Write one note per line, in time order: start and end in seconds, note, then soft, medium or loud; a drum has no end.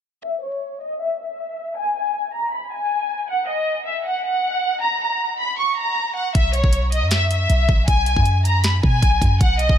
0.24 0.41 E5 loud
0.43 0.79 C#5 medium
0.81 0.98 D#5 medium
1.00 1.17 E5 medium
1.19 1.73 E5 medium
1.76 1.94 G#5 loud
1.95 2.31 G#5 medium
2.34 2.51 A#5 medium
2.53 2.70 B5 medium
2.72 3.26 G#5 medium
3.29 3.47 F#5 loud
3.48 3.84 D#5 medium
3.87 4.04 E5 medium
4.06 4.23 F#5 medium
4.25 4.79 F#5 medium
4.82 4.99 A#5 loud
5.01 5.37 A#5 medium
5.39 5.57 B5 medium
5.59 5.76 C#6 medium
5.78 6.14 A#5 medium
6.16 6.33 F#5 medium
6.35 6.62 B1 loud
6.35 6.52 E5 loud
6.35 kick loud
6.35 closed hi-hat medium
6.53 6.90 C#5 medium
6.53 closed hi-hat medium
6.64 7.03 B1 loud
6.64 kick medium
6.73 closed hi-hat medium
6.92 7.10 D#5 medium
6.92 closed hi-hat medium
7.02 7.47 F#2 medium
7.11 7.29 E5 loud
7.11 finger snap medium
7.11 snare loud
7.11 closed hi-hat medium
7.31 7.84 E5 medium
7.31 closed hi-hat medium
7.50 7.68 B1 loud
7.50 closed hi-hat medium
7.69 7.87 A#1 loud
7.69 kick loud
7.88 8.15 B1 loud
7.88 8.05 G#5 loud
7.88 kick loud
7.88 closed hi-hat medium
8.06 8.43 G#5 medium
8.06 closed hi-hat medium
8.16 8.81 F#2 loud
8.16 kick medium
8.25 closed hi-hat medium
8.45 8.62 A#5 loud
8.45 closed hi-hat medium
8.64 8.82 B5 medium
8.64 finger snap medium
8.64 snare loud
8.64 closed hi-hat medium
8.83 9.02 B2 loud
8.83 9.37 G#5 medium
8.83 kick loud
9.02 9.21 B1 loud
9.02 kick loud
9.02 closed hi-hat medium
9.22 9.40 F#2 loud
9.22 kick loud
9.22 closed hi-hat medium
9.41 9.68 B1 loud
9.41 9.58 F#5 loud
9.41 kick loud
9.41 closed hi-hat medium
9.59 9.78 D#5 medium
9.59 closed hi-hat medium
9.69 9.78 B1 loud
9.69 kick medium